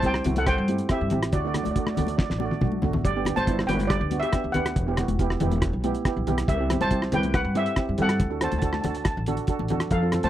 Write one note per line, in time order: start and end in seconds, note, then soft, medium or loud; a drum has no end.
0.00 0.23 C2 medium
0.00 0.17 C4 medium
0.00 0.17 E4 medium
0.00 kick medium
0.00 closed hi-hat medium
0.04 0.17 G4 medium
0.04 0.35 C5 medium
0.04 0.39 G5 loud
0.14 cross-stick medium
0.24 0.56 C2 loud
0.24 0.51 C4 medium
0.24 0.52 E4 medium
0.24 0.52 F#4 medium
0.24 closed hi-hat loud
0.24 low conga medium
0.36 0.42 A4 medium
0.36 0.42 F#5 loud
0.36 closed hi-hat medium
0.36 high conga medium
0.46 0.87 C5 medium
0.46 0.91 G5 loud
0.46 kick loud
0.46 cross-stick medium
0.46 closed hi-hat medium
0.58 0.78 G2 loud
0.68 0.82 C4 medium
0.68 0.82 E4 medium
0.68 0.82 G4 medium
0.68 closed hi-hat loud
0.68 high conga medium
0.78 closed hi-hat medium
0.89 1.04 C4 medium
0.89 1.03 E4 medium
0.89 1.04 G4 medium
0.89 1.31 G4 medium
0.89 1.35 E5 medium
0.89 kick medium
0.89 cross-stick medium
0.89 closed hi-hat medium
1.01 1.11 G2 medium
1.10 1.32 A1 medium
1.10 1.31 C4 medium
1.10 1.32 E4 medium
1.10 1.31 G4 medium
1.10 closed hi-hat medium
1.10 low conga medium
1.23 cross-stick medium
1.23 closed hi-hat medium
1.32 1.63 D2 loud
1.32 1.41 F#4 medium
1.32 1.39 D5 medium
1.32 kick loud
1.32 closed hi-hat medium
1.40 1.51 A3 medium
1.40 1.46 D5 medium
1.45 1.51 D4 medium
1.45 1.51 F#4 medium
1.45 1.55 D5 medium
1.54 1.68 A3 medium
1.54 1.68 D4 medium
1.54 1.68 F#4 medium
1.54 1.63 D5 medium
1.54 cross-stick medium
1.54 closed hi-hat medium
1.54 low conga medium
1.64 1.95 D2 medium
1.64 1.70 D5 medium
1.64 closed hi-hat medium
1.64 high conga medium
1.71 1.77 D5 medium
1.76 1.89 A3 medium
1.76 1.89 D4 medium
1.76 1.90 F#4 medium
1.76 1.85 D5 medium
1.76 kick medium
1.76 closed hi-hat medium
1.86 1.93 D5 soft
1.86 cross-stick medium
1.86 high conga medium
1.94 2.23 A3 medium
1.94 2.23 D4 medium
1.94 2.23 F#4 medium
1.94 2.01 D5 medium
1.94 closed hi-hat medium
1.94 low conga medium
1.98 2.28 D2 loud
1.98 2.08 D5 medium
2.07 2.15 D5 medium
2.07 closed hi-hat medium
2.07 high conga medium
2.16 2.22 D5 soft
2.16 kick loud
2.16 snare medium
2.23 2.29 D5 medium
2.30 2.50 A1 medium
2.30 2.37 D5 medium
2.30 snare medium
2.39 2.54 A3 medium
2.39 2.54 D4 medium
2.39 2.54 F#4 medium
2.39 2.44 D5 medium
2.39 high conga medium
2.45 2.53 D5 medium
2.51 high tom medium
2.61 2.81 B1 medium
2.61 2.75 A3 medium
2.61 2.75 D4 medium
2.61 2.75 F#4 medium
2.61 kick medium
2.61 mid tom loud
2.61 high conga medium
2.72 high conga medium
2.82 3.03 A1 medium
2.82 3.02 A3 medium
2.82 3.03 D4 medium
2.82 3.03 F#4 medium
2.82 floor tom loud
2.82 low conga medium
2.93 floor tom loud
2.93 low conga medium
3.05 3.35 G1 loud
3.05 3.35 G4 medium
3.05 3.35 D5 medium
3.05 kick loud
3.05 closed hi-hat medium
3.16 3.22 B3 medium
3.16 3.22 D4 medium
3.16 3.23 G4 medium
3.25 3.40 B3 medium
3.25 3.40 D4 medium
3.25 3.40 G4 medium
3.25 cross-stick medium
3.25 closed hi-hat loud
3.25 low conga medium
3.36 3.66 G1 medium
3.36 3.67 C5 medium
3.36 3.66 A5 loud
3.36 closed hi-hat medium
3.36 high conga medium
3.47 3.61 B3 medium
3.47 3.61 D4 medium
3.47 3.61 E4 medium
3.47 kick medium
3.47 closed hi-hat medium
3.59 cross-stick medium
3.67 3.99 G1 loud
3.67 3.95 B3 medium
3.67 3.95 D4 medium
3.67 3.95 F#4 medium
3.67 3.89 B4 medium
3.67 3.90 G5 loud
3.67 closed hi-hat loud
3.67 low conga medium
3.79 closed hi-hat medium
3.79 high conga medium
3.87 4.21 G4 medium
3.87 4.23 D5 loud
3.87 kick loud
3.87 cross-stick medium
3.87 closed hi-hat medium
4.01 4.21 D2 loud
4.11 4.25 B3 medium
4.11 4.25 D4 medium
4.11 4.25 F#4 medium
4.11 closed hi-hat loud
4.11 high conga medium
4.20 4.53 G4 medium
4.20 4.54 E5 loud
4.20 closed hi-hat medium
4.33 4.47 B3 medium
4.33 4.47 D4 medium
4.33 4.47 G4 medium
4.33 kick loud
4.33 cross-stick medium
4.33 closed hi-hat medium
4.44 4.54 D2 medium
4.52 4.75 D2 medium
4.52 4.74 B3 medium
4.52 4.74 D4 medium
4.52 4.75 G4 medium
4.52 5.37 B4 medium
4.52 5.36 F#5 medium
4.52 closed hi-hat medium
4.52 low conga medium
4.66 cross-stick loud
4.66 closed hi-hat medium
4.76 5.06 E1 loud
4.76 kick loud
4.76 closed hi-hat medium
4.88 4.94 B3 medium
4.88 4.94 E4 medium
4.88 4.94 G4 medium
4.97 5.11 B3 medium
4.97 5.11 E4 medium
4.97 5.11 F#4 medium
4.97 cross-stick loud
4.97 closed hi-hat medium
4.97 low conga medium
5.08 5.38 E1 medium
5.08 closed hi-hat medium
5.08 high conga medium
5.19 5.33 B3 loud
5.19 5.33 E4 medium
5.19 5.33 G4 loud
5.19 kick medium
5.19 closed hi-hat medium
5.30 cross-stick medium
5.40 5.71 E1 loud
5.40 5.67 B3 medium
5.40 5.67 E4 medium
5.40 5.67 G4 loud
5.40 closed hi-hat medium
5.40 low conga medium
5.51 closed hi-hat medium
5.51 high conga medium
5.62 kick loud
5.62 cross-stick medium
5.62 closed hi-hat medium
5.73 5.93 B1 loud
5.84 5.97 B3 loud
5.84 5.97 E4 medium
5.84 5.97 G4 loud
5.84 closed hi-hat medium
5.84 high conga medium
5.95 closed hi-hat medium
6.05 6.18 B3 medium
6.05 6.19 E4 medium
6.05 6.19 G4 loud
6.05 kick medium
6.05 cross-stick medium
6.05 closed hi-hat medium
6.16 6.26 B1 medium
6.27 6.47 B1 medium
6.27 6.46 B3 medium
6.27 6.46 E4 medium
6.27 6.47 G4 loud
6.27 closed hi-hat medium
6.27 low conga medium
6.38 cross-stick medium
6.38 closed hi-hat medium
6.48 6.78 C2 loud
6.48 6.78 G4 medium
6.48 6.82 E5 medium
6.48 kick loud
6.48 closed hi-hat medium
6.60 6.66 C4 medium
6.60 6.66 E4 medium
6.60 6.66 G4 medium
6.70 6.83 C4 medium
6.70 6.83 E4 medium
6.70 6.83 G4 medium
6.70 cross-stick loud
6.70 closed hi-hat medium
6.70 low conga medium
6.81 7.10 C2 medium
6.81 7.11 C5 medium
6.81 7.14 A5 loud
6.81 closed hi-hat medium
6.81 high conga medium
6.91 7.04 C4 medium
6.91 7.04 E4 medium
6.91 7.04 G4 medium
6.91 kick medium
6.91 closed hi-hat medium
7.02 cross-stick medium
7.12 7.42 C2 loud
7.12 7.38 C4 medium
7.12 7.38 E4 medium
7.12 7.38 G4 medium
7.12 7.33 B4 medium
7.12 7.35 G5 loud
7.12 closed hi-hat loud
7.12 low conga medium
7.23 closed hi-hat medium
7.23 high conga medium
7.34 7.54 B4 medium
7.34 7.54 F#5 loud
7.34 kick loud
7.34 cross-stick medium
7.34 closed hi-hat medium
7.44 7.64 G2 loud
7.55 7.68 C4 medium
7.55 7.68 E4 medium
7.55 7.95 G4 medium
7.55 7.69 G4 medium
7.55 8.00 E5 loud
7.55 closed hi-hat medium
7.55 high conga medium
7.66 closed hi-hat medium
7.76 7.90 C4 medium
7.76 7.90 E4 medium
7.76 7.90 G4 medium
7.76 kick loud
7.76 cross-stick medium
7.76 closed hi-hat medium
7.89 7.98 G2 medium
7.98 8.18 G2 medium
7.98 8.18 C4 medium
7.98 8.18 E4 medium
7.98 8.18 G4 medium
7.98 8.39 A4 medium
7.98 closed hi-hat medium
7.98 low conga medium
8.02 8.44 F#5 loud
8.09 cross-stick medium
8.09 closed hi-hat medium
8.20 8.50 D2 loud
8.20 kick loud
8.20 closed hi-hat medium
8.30 8.37 D4 medium
8.30 8.37 F#4 medium
8.30 8.37 A4 medium
8.41 8.54 D4 medium
8.41 8.54 F#4 medium
8.41 8.54 A4 medium
8.41 8.49 C5 medium
8.41 8.50 A5 medium
8.41 cross-stick loud
8.41 closed hi-hat medium
8.41 low conga medium
8.51 8.82 D2 medium
8.51 8.57 A5 medium
8.51 closed hi-hat medium
8.51 high conga medium
8.58 8.75 D4 medium
8.58 8.64 A5 medium
8.58 kick medium
8.58 closed hi-hat medium
8.63 8.76 F#4 medium
8.63 8.76 A4 medium
8.63 8.72 A5 medium
8.73 8.80 A5 medium
8.73 cross-stick medium
8.73 high conga medium
8.81 9.14 D2 loud
8.81 9.10 D4 medium
8.81 9.10 F#4 medium
8.81 9.10 A4 medium
8.81 8.87 A5 medium
8.81 closed hi-hat medium
8.81 low conga medium
8.90 8.95 A5 medium
8.95 9.02 A5 medium
8.95 closed hi-hat medium
9.04 9.10 A5 medium
9.04 kick loud
9.04 cross-stick medium
9.04 closed hi-hat medium
9.11 9.17 A5 medium
9.17 9.36 A1 loud
9.26 9.40 D4 loud
9.26 9.40 F#4 medium
9.26 9.40 A4 loud
9.26 closed hi-hat medium
9.26 low conga medium
9.37 closed hi-hat medium
9.47 9.61 D4 medium
9.47 9.62 F#4 medium
9.47 9.62 A4 loud
9.47 kick loud
9.47 closed hi-hat medium
9.59 9.69 A1 medium
9.59 high conga medium
9.68 9.90 E2 medium
9.68 9.90 D4 medium
9.68 9.90 F#4 medium
9.68 9.90 A4 loud
9.68 closed hi-hat medium
9.68 low conga medium
9.80 cross-stick medium
9.80 closed hi-hat medium
9.91 10.21 F2 loud
9.91 10.22 A4 medium
9.91 10.25 F5 loud
9.91 kick loud
9.91 closed hi-hat medium
10.02 10.08 C4 medium
10.02 10.09 F4 medium
10.02 10.09 A4 medium
10.12 10.26 C4 medium
10.12 10.26 F4 medium
10.12 10.26 A4 medium
10.12 cross-stick medium
10.12 closed hi-hat medium
10.12 low conga medium
10.23 10.29 F2 medium
10.23 10.29 C5 medium
10.23 10.29 A5 loud
10.23 closed hi-hat medium
10.23 high conga medium